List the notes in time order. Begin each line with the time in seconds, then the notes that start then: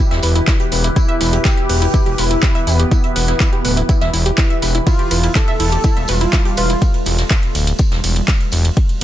Already playing: E2 B2 E3 E4 G4 B4
0.11 E1 E5, snare, closed hi-hat
0.23 E1 B4, open hi-hat, tambourine
0.35 E4, closed hi-hat
0.47 E4, kick, snare, clap, closed hi-hat, tambourine
0.60 G4, closed hi-hat
0.72 E1 B4, open hi-hat, tambourine
0.84 E4, closed hi-hat
0.96 E4, kick, closed hi-hat, tambourine
1.09 E5, closed hi-hat
1.21 E1 E4, open hi-hat, tambourine
1.33 G4, closed hi-hat
1.45 E4 G4, kick, snare, clap, closed hi-hat, tambourine
1.57 E5, closed hi-hat
1.69 E1 B4, open hi-hat
1.82 E4, closed hi-hat
1.94 E4, kick, closed hi-hat, tambourine
2.06 E1 G4, closed hi-hat
2.18 E1 E4 B4, open hi-hat, tambourine
2.31 E4, closed hi-hat
2.42 E4, kick, snare, clap, closed hi-hat, tambourine
2.55 E5, closed hi-hat
2.67 E1 B3 E4, open hi-hat, tambourine
2.79 G4, closed hi-hat
2.91 E4, kick, closed hi-hat, tambourine
3.03 E5, closed hi-hat
3.16 E1 B4, open hi-hat, tambourine
3.28 E4, snare, closed hi-hat
3.40 E4, kick, snare, clap, closed hi-hat, tambourine
3.53 G4, closed hi-hat
3.65 D1 B4, open hi-hat, tambourine
3.77 E4, closed hi-hat
3.89 E4, kick, closed hi-hat, tambourine
4.01 E1 E5, snare, closed hi-hat
4.13 E1 E4, open hi-hat, tambourine
4.26 G4, closed hi-hat
4.37 E4, kick, snare, clap, closed hi-hat, tambourine
4.50 E5, closed hi-hat
4.62 E1 B4, open hi-hat, tambourine
4.75 E4, closed hi-hat
4.87 G3 A3 E4 F4, kick, closed hi-hat, ride, tambourine
4.99 G4, closed hi-hat
5.11 E1 B4, open hi-hat, ride, tambourine
5.23 E4, closed hi-hat
5.35 E4 A4, kick, snare, clap, closed hi-hat, ride, tambourine
5.48 E5, closed hi-hat
5.60 E1 E4, open hi-hat, ride
5.72 G4, closed hi-hat
5.84 E4, kick, closed hi-hat, ride, tambourine
5.97 E1 E5, closed hi-hat
6.08 E1 F4 B4, open hi-hat, ride, tambourine
6.21 E4, closed hi-hat
6.33 E4, kick, snare, clap, closed hi-hat, ride, tambourine
6.45 G4, closed hi-hat
6.57 E1 F4 B4, open hi-hat, ride, tambourine
6.70 E4, closed hi-hat
6.82 kick, closed hi-hat, ride, tambourine
6.94 closed hi-hat
7.06 E1, open hi-hat, ride, tambourine
7.19 snare, closed hi-hat
7.30 kick, snare, clap, closed hi-hat, ride, tambourine
7.43 closed hi-hat
7.55 D1, open hi-hat, ride, tambourine
7.67 closed hi-hat
7.79 kick, closed hi-hat, ride, tambourine
7.91 E1, snare, closed hi-hat
8.04 E1, open hi-hat, ride, tambourine
8.16 closed hi-hat
8.28 kick, snare, clap, closed hi-hat, ride, tambourine
8.40 closed hi-hat
8.52 E1, open hi-hat, ride, tambourine
8.65 closed hi-hat
8.77 kick, closed hi-hat, ride
8.89 closed hi-hat